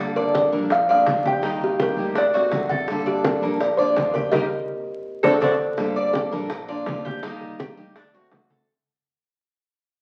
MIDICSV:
0, 0, Header, 1, 7, 480
1, 0, Start_track
1, 0, Key_signature, -2, "minor"
1, 0, Tempo, 362538
1, 1899, Time_signature, 4, 2, 24, 8
1, 7657, Key_signature, -2, "minor"
1, 13256, End_track
2, 0, Start_track
2, 0, Title_t, "Kalimba"
2, 0, Program_c, 0, 108
2, 215, Note_on_c, 0, 70, 90
2, 459, Note_on_c, 0, 74, 95
2, 464, Note_off_c, 0, 70, 0
2, 905, Note_off_c, 0, 74, 0
2, 954, Note_on_c, 0, 77, 102
2, 1170, Note_off_c, 0, 77, 0
2, 1200, Note_on_c, 0, 77, 92
2, 1684, Note_off_c, 0, 77, 0
2, 1687, Note_on_c, 0, 79, 94
2, 1897, Note_off_c, 0, 79, 0
2, 2168, Note_on_c, 0, 67, 87
2, 2400, Note_off_c, 0, 67, 0
2, 2412, Note_on_c, 0, 70, 96
2, 2889, Note_off_c, 0, 70, 0
2, 2889, Note_on_c, 0, 74, 101
2, 3098, Note_off_c, 0, 74, 0
2, 3114, Note_on_c, 0, 74, 99
2, 3553, Note_off_c, 0, 74, 0
2, 3567, Note_on_c, 0, 78, 83
2, 3796, Note_off_c, 0, 78, 0
2, 4067, Note_on_c, 0, 67, 82
2, 4173, Note_off_c, 0, 67, 0
2, 4296, Note_on_c, 0, 70, 86
2, 4779, Note_on_c, 0, 74, 84
2, 4792, Note_off_c, 0, 70, 0
2, 4996, Note_on_c, 0, 72, 88
2, 5026, Note_off_c, 0, 74, 0
2, 5478, Note_on_c, 0, 70, 73
2, 5501, Note_off_c, 0, 72, 0
2, 5707, Note_off_c, 0, 70, 0
2, 5713, Note_on_c, 0, 75, 92
2, 5716, Note_on_c, 0, 67, 91
2, 5722, Note_on_c, 0, 70, 92
2, 5876, Note_off_c, 0, 75, 0
2, 5878, Note_off_c, 0, 67, 0
2, 5882, Note_off_c, 0, 70, 0
2, 6936, Note_on_c, 0, 69, 100
2, 6942, Note_on_c, 0, 74, 86
2, 6945, Note_on_c, 0, 72, 101
2, 7090, Note_off_c, 0, 69, 0
2, 7093, Note_off_c, 0, 74, 0
2, 7095, Note_off_c, 0, 72, 0
2, 7194, Note_on_c, 0, 69, 97
2, 7199, Note_on_c, 0, 74, 89
2, 7201, Note_on_c, 0, 72, 93
2, 7340, Note_off_c, 0, 69, 0
2, 7343, Note_off_c, 0, 74, 0
2, 7344, Note_off_c, 0, 72, 0
2, 13256, End_track
3, 0, Start_track
3, 0, Title_t, "Cuban tres"
3, 0, Program_c, 1, 25
3, 0, Note_on_c, 1, 69, 69
3, 201, Note_off_c, 1, 69, 0
3, 217, Note_on_c, 1, 74, 71
3, 683, Note_off_c, 1, 74, 0
3, 697, Note_on_c, 1, 70, 66
3, 1163, Note_off_c, 1, 70, 0
3, 1178, Note_on_c, 1, 74, 78
3, 1644, Note_off_c, 1, 74, 0
3, 1660, Note_on_c, 1, 67, 75
3, 1892, Note_off_c, 1, 67, 0
3, 1903, Note_on_c, 1, 63, 75
3, 2367, Note_off_c, 1, 63, 0
3, 2378, Note_on_c, 1, 67, 68
3, 2844, Note_off_c, 1, 67, 0
3, 2864, Note_on_c, 1, 62, 78
3, 3094, Note_off_c, 1, 62, 0
3, 3097, Note_on_c, 1, 66, 81
3, 3563, Note_off_c, 1, 66, 0
3, 3573, Note_on_c, 1, 69, 75
3, 4041, Note_off_c, 1, 69, 0
3, 4051, Note_on_c, 1, 74, 79
3, 4520, Note_off_c, 1, 74, 0
3, 4537, Note_on_c, 1, 70, 73
3, 5003, Note_off_c, 1, 70, 0
3, 5010, Note_on_c, 1, 74, 83
3, 5479, Note_off_c, 1, 74, 0
3, 5488, Note_on_c, 1, 67, 83
3, 5711, Note_off_c, 1, 67, 0
3, 5724, Note_on_c, 1, 63, 96
3, 5729, Note_on_c, 1, 67, 76
3, 5735, Note_on_c, 1, 70, 82
3, 5883, Note_off_c, 1, 70, 0
3, 5884, Note_off_c, 1, 63, 0
3, 5885, Note_off_c, 1, 67, 0
3, 6926, Note_on_c, 1, 69, 102
3, 6929, Note_on_c, 1, 66, 76
3, 6935, Note_on_c, 1, 62, 76
3, 7084, Note_off_c, 1, 66, 0
3, 7085, Note_off_c, 1, 62, 0
3, 7086, Note_off_c, 1, 69, 0
3, 7163, Note_on_c, 1, 62, 94
3, 7173, Note_on_c, 1, 66, 84
3, 7176, Note_on_c, 1, 69, 69
3, 7324, Note_off_c, 1, 62, 0
3, 7325, Note_off_c, 1, 69, 0
3, 7326, Note_off_c, 1, 66, 0
3, 7891, Note_on_c, 1, 74, 77
3, 8359, Note_off_c, 1, 74, 0
3, 8373, Note_on_c, 1, 70, 70
3, 8840, Note_off_c, 1, 70, 0
3, 8851, Note_on_c, 1, 74, 72
3, 9319, Note_off_c, 1, 74, 0
3, 9334, Note_on_c, 1, 67, 73
3, 9567, Note_off_c, 1, 67, 0
3, 9576, Note_on_c, 1, 63, 86
3, 10041, Note_off_c, 1, 63, 0
3, 10057, Note_on_c, 1, 67, 69
3, 10522, Note_off_c, 1, 67, 0
3, 10542, Note_on_c, 1, 62, 82
3, 10772, Note_off_c, 1, 62, 0
3, 10783, Note_on_c, 1, 66, 77
3, 11245, Note_off_c, 1, 66, 0
3, 11259, Note_on_c, 1, 69, 73
3, 11490, Note_off_c, 1, 69, 0
3, 13256, End_track
4, 0, Start_track
4, 0, Title_t, "Steel-string acoustic guitar"
4, 0, Program_c, 2, 25
4, 0, Note_on_c, 2, 50, 69
4, 0, Note_on_c, 2, 55, 64
4, 0, Note_on_c, 2, 58, 71
4, 0, Note_on_c, 2, 62, 82
4, 0, Note_on_c, 2, 69, 73
4, 674, Note_off_c, 2, 69, 0
4, 679, Note_off_c, 2, 50, 0
4, 681, Note_off_c, 2, 55, 0
4, 682, Note_off_c, 2, 62, 0
4, 689, Note_off_c, 2, 58, 0
4, 690, Note_on_c, 2, 69, 67
4, 698, Note_on_c, 2, 62, 70
4, 703, Note_on_c, 2, 58, 57
4, 720, Note_on_c, 2, 55, 57
4, 925, Note_off_c, 2, 69, 0
4, 929, Note_off_c, 2, 62, 0
4, 931, Note_off_c, 2, 58, 0
4, 940, Note_off_c, 2, 55, 0
4, 1172, Note_on_c, 2, 65, 75
4, 1190, Note_on_c, 2, 62, 63
4, 1207, Note_on_c, 2, 58, 51
4, 1406, Note_off_c, 2, 65, 0
4, 1410, Note_off_c, 2, 58, 0
4, 1415, Note_off_c, 2, 62, 0
4, 1417, Note_on_c, 2, 53, 51
4, 1426, Note_on_c, 2, 58, 52
4, 1435, Note_on_c, 2, 62, 61
4, 1446, Note_on_c, 2, 65, 56
4, 1879, Note_on_c, 2, 51, 81
4, 1887, Note_off_c, 2, 58, 0
4, 1888, Note_off_c, 2, 53, 0
4, 1897, Note_off_c, 2, 62, 0
4, 1897, Note_on_c, 2, 55, 73
4, 1903, Note_off_c, 2, 65, 0
4, 1903, Note_on_c, 2, 58, 75
4, 1905, Note_on_c, 2, 63, 88
4, 1917, Note_on_c, 2, 67, 80
4, 2599, Note_off_c, 2, 51, 0
4, 2602, Note_off_c, 2, 67, 0
4, 2608, Note_off_c, 2, 55, 0
4, 2611, Note_off_c, 2, 58, 0
4, 2613, Note_off_c, 2, 63, 0
4, 2618, Note_on_c, 2, 67, 66
4, 2626, Note_on_c, 2, 63, 57
4, 2634, Note_on_c, 2, 58, 63
4, 2646, Note_on_c, 2, 55, 54
4, 2847, Note_off_c, 2, 55, 0
4, 2849, Note_off_c, 2, 67, 0
4, 2851, Note_off_c, 2, 58, 0
4, 2853, Note_off_c, 2, 63, 0
4, 3096, Note_on_c, 2, 66, 67
4, 3115, Note_on_c, 2, 60, 54
4, 3123, Note_on_c, 2, 57, 58
4, 3328, Note_off_c, 2, 66, 0
4, 3332, Note_off_c, 2, 57, 0
4, 3337, Note_off_c, 2, 60, 0
4, 3342, Note_on_c, 2, 50, 48
4, 3348, Note_on_c, 2, 57, 55
4, 3360, Note_on_c, 2, 60, 56
4, 3366, Note_on_c, 2, 66, 57
4, 3811, Note_off_c, 2, 50, 0
4, 3814, Note_off_c, 2, 57, 0
4, 3819, Note_off_c, 2, 60, 0
4, 3823, Note_off_c, 2, 66, 0
4, 3832, Note_on_c, 2, 50, 78
4, 3836, Note_on_c, 2, 55, 75
4, 3846, Note_on_c, 2, 58, 74
4, 3850, Note_on_c, 2, 62, 80
4, 3859, Note_on_c, 2, 69, 86
4, 4512, Note_off_c, 2, 69, 0
4, 4525, Note_off_c, 2, 62, 0
4, 4528, Note_on_c, 2, 69, 69
4, 4535, Note_off_c, 2, 50, 0
4, 4535, Note_off_c, 2, 58, 0
4, 4537, Note_off_c, 2, 55, 0
4, 4541, Note_on_c, 2, 62, 68
4, 4551, Note_on_c, 2, 58, 64
4, 4557, Note_on_c, 2, 55, 53
4, 4755, Note_off_c, 2, 55, 0
4, 4756, Note_off_c, 2, 58, 0
4, 4758, Note_off_c, 2, 62, 0
4, 4763, Note_off_c, 2, 69, 0
4, 5014, Note_on_c, 2, 65, 62
4, 5026, Note_on_c, 2, 62, 62
4, 5046, Note_on_c, 2, 58, 57
4, 5246, Note_off_c, 2, 65, 0
4, 5248, Note_off_c, 2, 58, 0
4, 5252, Note_off_c, 2, 62, 0
4, 5256, Note_on_c, 2, 53, 52
4, 5264, Note_on_c, 2, 58, 51
4, 5267, Note_on_c, 2, 62, 52
4, 5276, Note_on_c, 2, 65, 56
4, 5722, Note_off_c, 2, 58, 0
4, 5727, Note_off_c, 2, 53, 0
4, 5733, Note_off_c, 2, 62, 0
4, 5734, Note_on_c, 2, 55, 94
4, 5737, Note_off_c, 2, 65, 0
4, 5741, Note_on_c, 2, 58, 89
4, 5745, Note_on_c, 2, 63, 79
4, 5891, Note_off_c, 2, 55, 0
4, 5891, Note_off_c, 2, 58, 0
4, 5891, Note_off_c, 2, 63, 0
4, 6943, Note_on_c, 2, 62, 86
4, 6952, Note_on_c, 2, 60, 83
4, 6954, Note_on_c, 2, 57, 80
4, 7096, Note_off_c, 2, 62, 0
4, 7097, Note_off_c, 2, 57, 0
4, 7098, Note_off_c, 2, 60, 0
4, 7175, Note_on_c, 2, 57, 89
4, 7178, Note_on_c, 2, 60, 86
4, 7186, Note_on_c, 2, 62, 72
4, 7329, Note_off_c, 2, 60, 0
4, 7331, Note_off_c, 2, 57, 0
4, 7331, Note_off_c, 2, 62, 0
4, 7641, Note_on_c, 2, 50, 72
4, 7649, Note_on_c, 2, 55, 78
4, 7659, Note_on_c, 2, 58, 78
4, 7666, Note_on_c, 2, 62, 74
4, 7677, Note_on_c, 2, 69, 75
4, 8341, Note_off_c, 2, 69, 0
4, 8357, Note_on_c, 2, 69, 67
4, 8358, Note_off_c, 2, 50, 0
4, 8358, Note_off_c, 2, 62, 0
4, 8363, Note_off_c, 2, 55, 0
4, 8363, Note_off_c, 2, 58, 0
4, 8374, Note_on_c, 2, 62, 66
4, 8379, Note_on_c, 2, 58, 64
4, 8392, Note_on_c, 2, 55, 53
4, 8596, Note_off_c, 2, 58, 0
4, 8597, Note_off_c, 2, 69, 0
4, 8599, Note_off_c, 2, 55, 0
4, 8605, Note_off_c, 2, 62, 0
4, 8854, Note_on_c, 2, 65, 66
4, 8867, Note_on_c, 2, 62, 63
4, 8875, Note_on_c, 2, 58, 61
4, 9075, Note_off_c, 2, 58, 0
4, 9081, Note_on_c, 2, 53, 60
4, 9085, Note_off_c, 2, 62, 0
4, 9085, Note_off_c, 2, 65, 0
4, 9091, Note_on_c, 2, 58, 52
4, 9101, Note_on_c, 2, 62, 54
4, 9105, Note_on_c, 2, 65, 57
4, 9559, Note_off_c, 2, 53, 0
4, 9564, Note_off_c, 2, 58, 0
4, 9568, Note_off_c, 2, 62, 0
4, 9570, Note_off_c, 2, 65, 0
4, 9575, Note_on_c, 2, 51, 72
4, 9582, Note_on_c, 2, 55, 79
4, 9590, Note_on_c, 2, 58, 76
4, 9602, Note_on_c, 2, 63, 91
4, 9605, Note_on_c, 2, 67, 78
4, 10274, Note_off_c, 2, 67, 0
4, 10278, Note_off_c, 2, 63, 0
4, 10285, Note_off_c, 2, 51, 0
4, 10289, Note_off_c, 2, 55, 0
4, 10290, Note_on_c, 2, 67, 68
4, 10293, Note_off_c, 2, 58, 0
4, 10294, Note_on_c, 2, 63, 68
4, 10307, Note_on_c, 2, 58, 60
4, 10312, Note_on_c, 2, 55, 60
4, 10523, Note_off_c, 2, 67, 0
4, 10525, Note_off_c, 2, 63, 0
4, 10532, Note_off_c, 2, 58, 0
4, 10534, Note_off_c, 2, 55, 0
4, 10782, Note_on_c, 2, 66, 68
4, 10796, Note_on_c, 2, 60, 55
4, 10802, Note_on_c, 2, 57, 60
4, 11009, Note_off_c, 2, 66, 0
4, 11016, Note_off_c, 2, 60, 0
4, 11019, Note_off_c, 2, 57, 0
4, 11021, Note_on_c, 2, 50, 51
4, 11033, Note_on_c, 2, 57, 54
4, 11043, Note_on_c, 2, 60, 56
4, 11046, Note_on_c, 2, 66, 57
4, 11489, Note_off_c, 2, 50, 0
4, 11495, Note_off_c, 2, 57, 0
4, 11500, Note_off_c, 2, 60, 0
4, 11501, Note_off_c, 2, 66, 0
4, 13256, End_track
5, 0, Start_track
5, 0, Title_t, "Upright bass"
5, 0, Program_c, 3, 32
5, 0, Note_on_c, 3, 31, 83
5, 621, Note_off_c, 3, 31, 0
5, 699, Note_on_c, 3, 34, 95
5, 1369, Note_off_c, 3, 34, 0
5, 1424, Note_on_c, 3, 39, 85
5, 2545, Note_off_c, 3, 39, 0
5, 2601, Note_on_c, 3, 38, 97
5, 3279, Note_off_c, 3, 38, 0
5, 3330, Note_on_c, 3, 31, 88
5, 4457, Note_off_c, 3, 31, 0
5, 4525, Note_on_c, 3, 34, 90
5, 5200, Note_off_c, 3, 34, 0
5, 5259, Note_on_c, 3, 39, 93
5, 5705, Note_off_c, 3, 39, 0
5, 5735, Note_on_c, 3, 39, 92
5, 5914, Note_off_c, 3, 39, 0
5, 6936, Note_on_c, 3, 38, 94
5, 7115, Note_off_c, 3, 38, 0
5, 7166, Note_on_c, 3, 38, 87
5, 7349, Note_off_c, 3, 38, 0
5, 7654, Note_on_c, 3, 31, 85
5, 8324, Note_off_c, 3, 31, 0
5, 8371, Note_on_c, 3, 34, 101
5, 9042, Note_off_c, 3, 34, 0
5, 9104, Note_on_c, 3, 39, 92
5, 9524, Note_off_c, 3, 39, 0
5, 10292, Note_on_c, 3, 38, 108
5, 10963, Note_off_c, 3, 38, 0
5, 11017, Note_on_c, 3, 38, 90
5, 11441, Note_off_c, 3, 38, 0
5, 13256, End_track
6, 0, Start_track
6, 0, Title_t, "Muted steel-string acoustic guitar strokes"
6, 951, Note_on_c, 9, 29, 63
6, 1084, Note_off_c, 9, 29, 0
6, 2852, Note_on_c, 9, 29, 74
6, 2984, Note_off_c, 9, 29, 0
6, 4761, Note_on_c, 9, 29, 64
6, 4893, Note_off_c, 9, 29, 0
6, 8604, Note_on_c, 9, 29, 67
6, 8737, Note_off_c, 9, 29, 0
6, 10537, Note_on_c, 9, 29, 67
6, 10670, Note_off_c, 9, 29, 0
6, 13256, End_track
7, 0, Start_track
7, 0, Title_t, "Drums"
7, 233, Note_on_c, 9, 63, 34
7, 365, Note_off_c, 9, 63, 0
7, 459, Note_on_c, 9, 60, 59
7, 465, Note_on_c, 9, 63, 81
7, 591, Note_off_c, 9, 60, 0
7, 597, Note_off_c, 9, 63, 0
7, 711, Note_on_c, 9, 63, 30
7, 843, Note_off_c, 9, 63, 0
7, 932, Note_on_c, 9, 60, 68
7, 954, Note_on_c, 9, 63, 35
7, 1064, Note_off_c, 9, 60, 0
7, 1086, Note_off_c, 9, 63, 0
7, 1191, Note_on_c, 9, 63, 36
7, 1323, Note_off_c, 9, 63, 0
7, 1410, Note_on_c, 9, 60, 68
7, 1410, Note_on_c, 9, 61, 76
7, 1418, Note_on_c, 9, 63, 89
7, 1542, Note_off_c, 9, 60, 0
7, 1542, Note_off_c, 9, 61, 0
7, 1551, Note_off_c, 9, 63, 0
7, 1661, Note_on_c, 9, 63, 93
7, 1794, Note_off_c, 9, 63, 0
7, 1893, Note_on_c, 9, 60, 70
7, 1903, Note_on_c, 9, 63, 38
7, 2025, Note_off_c, 9, 60, 0
7, 2035, Note_off_c, 9, 63, 0
7, 2137, Note_on_c, 9, 63, 33
7, 2140, Note_on_c, 9, 60, 38
7, 2269, Note_off_c, 9, 63, 0
7, 2272, Note_off_c, 9, 60, 0
7, 2377, Note_on_c, 9, 60, 66
7, 2378, Note_on_c, 9, 63, 84
7, 2510, Note_off_c, 9, 60, 0
7, 2511, Note_off_c, 9, 63, 0
7, 2624, Note_on_c, 9, 63, 29
7, 2756, Note_off_c, 9, 63, 0
7, 2853, Note_on_c, 9, 60, 73
7, 2868, Note_on_c, 9, 63, 35
7, 2985, Note_off_c, 9, 60, 0
7, 3000, Note_off_c, 9, 63, 0
7, 3096, Note_on_c, 9, 60, 34
7, 3111, Note_on_c, 9, 63, 33
7, 3228, Note_off_c, 9, 60, 0
7, 3243, Note_off_c, 9, 63, 0
7, 3330, Note_on_c, 9, 60, 69
7, 3330, Note_on_c, 9, 61, 69
7, 3343, Note_on_c, 9, 63, 86
7, 3463, Note_off_c, 9, 60, 0
7, 3463, Note_off_c, 9, 61, 0
7, 3475, Note_off_c, 9, 63, 0
7, 3573, Note_on_c, 9, 60, 35
7, 3584, Note_on_c, 9, 63, 89
7, 3706, Note_off_c, 9, 60, 0
7, 3716, Note_off_c, 9, 63, 0
7, 3812, Note_on_c, 9, 60, 66
7, 3829, Note_on_c, 9, 63, 34
7, 3944, Note_off_c, 9, 60, 0
7, 3961, Note_off_c, 9, 63, 0
7, 4058, Note_on_c, 9, 63, 32
7, 4191, Note_off_c, 9, 63, 0
7, 4296, Note_on_c, 9, 60, 57
7, 4297, Note_on_c, 9, 63, 96
7, 4428, Note_off_c, 9, 60, 0
7, 4429, Note_off_c, 9, 63, 0
7, 4550, Note_on_c, 9, 63, 33
7, 4682, Note_off_c, 9, 63, 0
7, 4773, Note_on_c, 9, 60, 75
7, 4777, Note_on_c, 9, 63, 39
7, 4906, Note_off_c, 9, 60, 0
7, 4909, Note_off_c, 9, 63, 0
7, 5024, Note_on_c, 9, 63, 32
7, 5156, Note_off_c, 9, 63, 0
7, 5250, Note_on_c, 9, 60, 71
7, 5250, Note_on_c, 9, 61, 76
7, 5267, Note_on_c, 9, 63, 88
7, 5382, Note_off_c, 9, 60, 0
7, 5382, Note_off_c, 9, 61, 0
7, 5400, Note_off_c, 9, 63, 0
7, 5502, Note_on_c, 9, 63, 84
7, 5635, Note_off_c, 9, 63, 0
7, 5728, Note_on_c, 9, 60, 95
7, 5750, Note_on_c, 9, 63, 99
7, 5860, Note_off_c, 9, 60, 0
7, 5883, Note_off_c, 9, 63, 0
7, 6938, Note_on_c, 9, 60, 91
7, 6941, Note_on_c, 9, 63, 94
7, 7070, Note_off_c, 9, 60, 0
7, 7073, Note_off_c, 9, 63, 0
7, 7174, Note_on_c, 9, 60, 91
7, 7181, Note_on_c, 9, 63, 105
7, 7306, Note_off_c, 9, 60, 0
7, 7314, Note_off_c, 9, 63, 0
7, 7650, Note_on_c, 9, 60, 68
7, 7673, Note_on_c, 9, 63, 35
7, 7782, Note_off_c, 9, 60, 0
7, 7806, Note_off_c, 9, 63, 0
7, 7907, Note_on_c, 9, 63, 33
7, 8039, Note_off_c, 9, 63, 0
7, 8123, Note_on_c, 9, 60, 62
7, 8146, Note_on_c, 9, 63, 94
7, 8255, Note_off_c, 9, 60, 0
7, 8278, Note_off_c, 9, 63, 0
7, 8392, Note_on_c, 9, 63, 31
7, 8524, Note_off_c, 9, 63, 0
7, 8603, Note_on_c, 9, 60, 71
7, 8630, Note_on_c, 9, 63, 33
7, 8735, Note_off_c, 9, 60, 0
7, 8763, Note_off_c, 9, 63, 0
7, 8875, Note_on_c, 9, 63, 35
7, 9007, Note_off_c, 9, 63, 0
7, 9087, Note_on_c, 9, 60, 69
7, 9087, Note_on_c, 9, 61, 72
7, 9116, Note_on_c, 9, 63, 84
7, 9220, Note_off_c, 9, 60, 0
7, 9220, Note_off_c, 9, 61, 0
7, 9248, Note_off_c, 9, 63, 0
7, 9350, Note_on_c, 9, 63, 89
7, 9482, Note_off_c, 9, 63, 0
7, 9571, Note_on_c, 9, 60, 69
7, 9600, Note_on_c, 9, 63, 34
7, 9704, Note_off_c, 9, 60, 0
7, 9733, Note_off_c, 9, 63, 0
7, 9814, Note_on_c, 9, 60, 37
7, 9832, Note_on_c, 9, 63, 33
7, 9947, Note_off_c, 9, 60, 0
7, 9964, Note_off_c, 9, 63, 0
7, 10059, Note_on_c, 9, 60, 64
7, 10064, Note_on_c, 9, 63, 97
7, 10191, Note_off_c, 9, 60, 0
7, 10197, Note_off_c, 9, 63, 0
7, 10307, Note_on_c, 9, 63, 34
7, 10439, Note_off_c, 9, 63, 0
7, 10535, Note_on_c, 9, 60, 75
7, 10546, Note_on_c, 9, 63, 36
7, 10667, Note_off_c, 9, 60, 0
7, 10679, Note_off_c, 9, 63, 0
7, 10772, Note_on_c, 9, 60, 36
7, 10790, Note_on_c, 9, 63, 31
7, 10905, Note_off_c, 9, 60, 0
7, 10922, Note_off_c, 9, 63, 0
7, 11009, Note_on_c, 9, 60, 70
7, 11009, Note_on_c, 9, 61, 80
7, 11030, Note_on_c, 9, 63, 91
7, 11142, Note_off_c, 9, 60, 0
7, 11142, Note_off_c, 9, 61, 0
7, 11162, Note_off_c, 9, 63, 0
7, 11254, Note_on_c, 9, 60, 35
7, 11257, Note_on_c, 9, 63, 87
7, 11387, Note_off_c, 9, 60, 0
7, 11390, Note_off_c, 9, 63, 0
7, 13256, End_track
0, 0, End_of_file